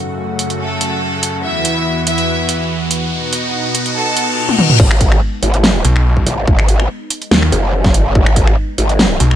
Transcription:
0.00 1.42 F#2 medium
0.00 1.42 C#3 medium
0.00 1.42 A3 medium
0.00 3.08 F#4 medium
0.00 riser medium
0.39 closed hi-hat medium
0.50 closed hi-hat soft
0.60 1.36 A3 medium
0.60 1.36 A4 medium
0.81 closed hi-hat medium
1.23 closed hi-hat medium
1.44 3.10 E2 medium
1.44 3.10 E3 medium
1.44 3.10 B3 medium
1.44 1.99 E4 medium
1.44 1.99 E5 loud
1.65 closed hi-hat medium
2.07 2.62 E4 medium
2.07 2.62 E5 loud
2.07 closed hi-hat medium
2.18 closed hi-hat soft
2.49 closed hi-hat medium
2.91 closed hi-hat medium
3.12 4.78 B2 medium
3.12 4.78 B3 medium
3.12 4.78 D#4 medium
3.12 4.78 F#4 medium
3.33 closed hi-hat medium
3.75 closed hi-hat medium
3.86 closed hi-hat soft
3.96 4.38 A4 medium
3.96 4.38 A5 loud
3.96 reverse cymbal medium
4.17 closed hi-hat medium
4.49 high tom medium
4.59 mid tom medium
4.70 mid tom medium
4.80 5.20 G#1 loud
4.80 9.36 G#3 medium
4.80 9.36 B3 medium
4.80 9.36 D#4 medium
4.80 kick loud
4.80 crash loud
4.91 finger snap medium
5.01 kick loud
5.01 closed hi-hat medium
5.12 finger snap medium
5.42 5.83 G#1 loud
5.42 closed hi-hat medium
5.54 closed hi-hat soft
5.64 snare loud
5.85 6.25 B1 loud
5.85 closed hi-hat medium
5.96 finger snap medium
6.17 kick medium
6.26 6.46 G#1 loud
6.26 closed hi-hat medium
6.47 6.88 G#1 loud
6.47 kick loud
6.59 finger snap medium
6.68 closed hi-hat medium
6.80 finger snap soft
7.10 closed hi-hat medium
7.22 closed hi-hat soft
7.31 7.51 D#2 loud
7.31 snare loud
7.43 finger snap medium
7.52 8.14 F#1 loud
7.52 closed hi-hat medium
7.84 kick loud
7.84 snare soft
7.94 closed hi-hat medium
8.15 8.56 G#1 loud
8.15 kick loud
8.26 finger snap medium
8.36 kick loud
8.36 closed hi-hat medium
8.47 finger snap medium
8.78 9.19 G#1 loud
8.78 closed hi-hat medium
8.89 closed hi-hat soft
8.99 snare loud
9.20 9.36 B1 loud
9.20 closed hi-hat medium
9.31 finger snap medium

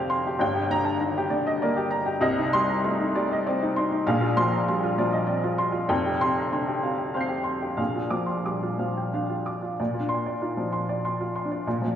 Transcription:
0.00 0.36 F1 medium
0.00 0.36 F2 medium
0.00 0.43 C3 medium
0.00 0.43 D3 medium
0.00 0.29 C4 medium
0.00 0.27 G4 medium
0.00 0.43 F5 medium
0.00 0.41 G5 medium
0.00 0.42 A#5 medium
0.00 0.10 C6 medium
0.10 0.34 C6 medium
0.27 0.41 G4 medium
0.39 2.18 G1 medium
0.39 2.19 G2 medium
0.39 0.65 G5 medium
0.55 0.79 G4 medium
0.70 1.19 D3 medium
0.70 0.95 A#5 medium
0.85 1.00 A5 medium
1.00 1.31 D#3 soft
1.00 1.25 A#5 medium
1.17 1.41 G4 medium
1.30 1.79 D3 medium
1.30 1.55 D5 medium
1.47 1.62 D#5 medium
1.62 2.11 A#3 medium
1.62 1.86 D5 medium
1.77 2.01 G4 medium
1.91 2.16 A#5 medium
2.06 2.22 G4 medium
2.21 4.00 C2 medium
2.21 4.01 C3 medium
2.21 2.46 D#5 medium
2.38 2.62 D#4 medium
2.53 3.02 G3 medium
2.53 2.77 C6 loud
2.69 2.84 A#5 medium
2.84 3.14 A3 medium
2.84 3.08 C6 medium
3.00 3.24 D#4 medium
3.15 3.64 G3 medium
3.15 3.39 D5 medium
3.32 3.46 D#5 medium
3.47 3.95 C4 medium
3.47 3.70 D5 medium
3.62 3.76 D#4 medium
3.76 3.90 D#4 medium
3.76 4.00 C6 medium
3.92 4.06 D#4 medium
4.06 5.86 A#1 medium
4.06 5.87 A#2 medium
4.06 4.30 F5 medium
4.21 4.45 F4 medium
4.37 4.85 F3 medium
4.37 4.61 C6 medium
4.52 4.67 A#5 medium
4.68 4.98 G3 medium
4.68 4.92 C6 medium
4.84 5.07 F4 medium
4.98 5.47 F3 medium
4.98 5.22 D5 medium
5.13 5.28 D#5 medium
5.27 5.77 C4 medium
5.27 5.52 D5 medium
5.44 5.68 F4 medium
5.58 5.83 C6 medium
5.72 5.89 F4 medium
5.88 7.74 F1 medium
5.88 7.74 F2 medium
5.88 6.14 G5 medium
6.06 6.30 G4 medium
6.21 6.71 C3 medium
6.21 6.46 C6 medium
6.37 6.52 A#5 soft
6.52 6.83 D3 soft
6.52 6.77 C6 medium
6.68 6.92 G4 medium
6.83 7.33 C3 soft
6.83 7.08 F5 medium
6.98 7.14 G5 soft
7.14 7.66 C4 soft
7.14 7.39 F5 medium
7.14 7.42 C6 soft
7.14 7.76 G6 soft
7.21 7.78 C7 soft
7.28 7.55 G4 medium
7.44 7.71 C6 medium
7.62 7.78 G4 soft
7.77 9.74 A#1 medium
7.77 9.74 A#2 medium
7.77 8.05 F5 medium
7.95 8.22 F4 soft
8.10 8.65 F3 soft
8.10 8.38 D6 medium
8.26 8.44 C6 soft
8.45 8.79 G3 soft
8.45 8.73 D6 soft
8.63 8.90 F4 soft
8.78 9.32 F3 soft
8.78 9.06 F5 soft
8.97 9.13 G5 soft
9.13 9.66 D4 soft
9.13 9.40 F5 soft
9.30 9.56 F4 soft
9.46 9.72 D6 soft
9.62 9.79 F4 soft
9.80 11.62 A#2 medium
9.80 10.05 D5 medium
9.94 10.20 F4 soft
10.00 10.34 D4 soft
10.09 10.35 C6 medium
10.26 10.51 D5 soft
10.41 10.62 D#4 soft
10.41 10.67 F4 soft
10.57 10.82 F3 soft
10.73 10.98 C6 soft
10.89 11.14 D5 soft
11.05 11.29 C6 medium
11.21 11.45 F4 soft
11.36 11.60 C6 soft
11.45 11.77 D4 soft
11.52 11.75 D5 soft
11.67 11.96 A#2 medium
11.67 11.91 F4 soft
11.82 11.85 F3 soft
11.87 11.96 F3 soft

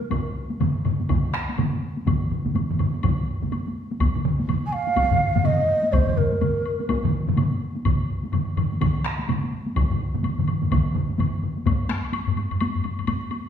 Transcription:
0.01 taiko high medium
0.11 taiko medium
0.11 taiko low-mid medium
0.11 taiko mid medium
0.11 taiko high medium
0.11 high woodblock soft
0.50 taiko high medium
0.60 taiko low-mid medium
0.60 taiko mid medium
0.60 taiko high medium
0.60 high woodblock soft
0.85 taiko low-mid medium
0.85 taiko mid medium
0.85 high woodblock soft
1.00 taiko high medium
1.09 taiko medium
1.09 taiko low-mid medium
1.09 taiko mid medium
1.09 taiko high medium
1.09 high woodblock soft
1.34 taiko rim medium
1.49 taiko high soft
1.58 taiko low-mid medium
1.58 taiko mid medium
1.58 taiko high medium
1.58 high woodblock soft
1.73 taiko high soft
1.97 taiko high soft
2.06 taiko medium
2.06 taiko low-mid medium
2.06 taiko mid medium
2.06 taiko high medium
2.06 high woodblock soft
2.31 taiko low-mid medium
2.31 taiko mid medium
2.45 taiko low-mid medium
2.45 taiko mid medium
2.45 taiko high medium
2.55 taiko low-mid medium
2.55 taiko mid medium
2.55 taiko high medium
2.55 high woodblock soft
2.70 taiko low-mid medium
2.70 taiko mid medium
2.79 taiko low-mid medium
2.79 taiko mid medium
2.79 high woodblock soft
2.94 taiko high soft
3.03 taiko medium
3.03 taiko low-mid medium
3.03 taiko mid medium
3.03 taiko high medium
3.03 high woodblock soft
3.42 taiko low-mid medium
3.42 taiko mid medium
3.42 taiko high medium
3.52 taiko high medium
3.52 high woodblock soft
3.67 taiko high medium
3.91 taiko high medium
4.00 taiko medium
4.00 taiko low-mid medium
4.00 taiko mid medium
4.00 taiko high medium
4.00 high woodblock medium
4.15 taiko low-mid medium
4.15 taiko mid medium
4.25 taiko low-mid medium
4.25 taiko mid medium
4.39 taiko high medium
4.48 taiko low-mid medium
4.48 taiko mid medium
4.48 taiko high medium
4.48 high woodblock soft
4.66 4.74 G#5 medium
4.72 5.47 F5 medium
4.72 high woodblock soft
4.87 taiko high medium
4.96 taiko medium
4.96 taiko high medium
4.96 high woodblock soft
5.11 taiko low-mid medium
5.11 taiko mid medium
5.35 taiko low-mid medium
5.35 taiko mid medium
5.35 taiko high medium
5.44 5.94 D#5 medium
5.44 taiko low-mid medium
5.44 taiko mid medium
5.44 taiko high medium
5.44 high woodblock soft
5.59 taiko high medium
5.83 taiko high medium
5.92 6.19 C5 medium
5.92 taiko loud
5.92 taiko low-mid medium
5.92 taiko mid medium
5.92 taiko high medium
5.92 high woodblock soft
6.07 taiko low-mid medium
6.07 taiko mid medium
6.17 6.89 A#4 medium
6.17 taiko low-mid medium
6.17 taiko mid medium
6.32 taiko high medium
6.41 taiko low-mid medium
6.41 taiko mid medium
6.41 taiko high medium
6.41 high woodblock soft
6.66 high woodblock soft
6.80 taiko high medium
6.89 taiko medium
6.89 taiko high medium
6.89 high woodblock soft
7.04 taiko low-mid medium
7.04 taiko mid medium
7.27 taiko low-mid medium
7.27 taiko mid medium
7.27 taiko high soft
7.37 taiko low-mid medium
7.37 taiko mid medium
7.37 taiko high medium
7.37 high woodblock soft
7.51 taiko high soft
7.75 taiko high soft
7.85 taiko medium
7.85 taiko low-mid medium
7.85 taiko mid medium
7.85 taiko high medium
7.85 high woodblock medium
8.23 taiko high soft
8.33 taiko low-mid medium
8.33 taiko mid medium
8.33 taiko high medium
8.33 high woodblock soft
8.57 taiko low-mid medium
8.57 taiko mid medium
8.57 high woodblock soft
8.72 taiko high soft
8.81 taiko medium
8.81 taiko low-mid medium
8.81 taiko mid medium
8.81 taiko high medium
8.81 high woodblock medium
9.05 taiko rim medium
9.06 taiko rim medium
9.19 taiko high soft
9.28 taiko low-mid medium
9.28 taiko mid medium
9.28 taiko high medium
9.28 high woodblock soft
9.43 taiko high soft
9.66 taiko high soft
9.76 taiko medium
9.76 taiko low-mid medium
9.76 taiko mid medium
9.76 taiko high medium
9.76 high woodblock medium
9.90 taiko low-mid medium
9.90 taiko mid medium
10.14 taiko low-mid medium
10.14 taiko mid medium
10.14 taiko high soft
10.23 taiko low-mid medium
10.23 taiko mid medium
10.23 taiko high medium
10.23 high woodblock soft
10.38 taiko low-mid medium
10.38 taiko mid medium
10.48 taiko low-mid medium
10.48 taiko mid medium
10.48 high woodblock soft
10.62 taiko low-mid medium
10.62 taiko mid medium
10.62 taiko high soft
10.71 taiko medium
10.71 taiko low-mid medium
10.71 taiko mid medium
10.71 taiko high medium
10.71 high woodblock medium
10.95 taiko low-mid medium
10.95 taiko mid medium
11.10 taiko high soft
11.18 taiko low-mid medium
11.18 taiko mid medium
11.18 taiko high medium
11.18 high woodblock soft
11.43 taiko low-mid medium
11.43 taiko mid medium
11.57 taiko high soft
11.66 taiko loud
11.66 taiko low-mid loud
11.66 taiko high medium
11.66 high woodblock soft
11.80 taiko high soft
11.89 taiko rim medium
11.89 taiko high medium
11.89 high woodblock soft
12.04 taiko high soft
12.04 high woodblock soft
12.13 taiko high medium
12.13 high woodblock medium
12.27 taiko low-mid loud
12.27 taiko high soft
12.37 taiko high medium
12.37 high woodblock soft
12.51 taiko low-mid medium
12.51 taiko high soft
12.51 high woodblock soft
12.61 taiko low-mid medium
12.61 taiko high medium
12.61 high woodblock medium
12.75 taiko low-mid medium
12.75 taiko high soft
12.84 taiko low-mid medium
12.84 taiko high medium
12.84 high woodblock soft
12.99 taiko low-mid medium
12.99 taiko high soft
12.99 high woodblock soft
13.07 taiko low-mid loud
13.07 taiko high medium
13.07 high woodblock medium
13.31 taiko high medium
13.31 high woodblock soft

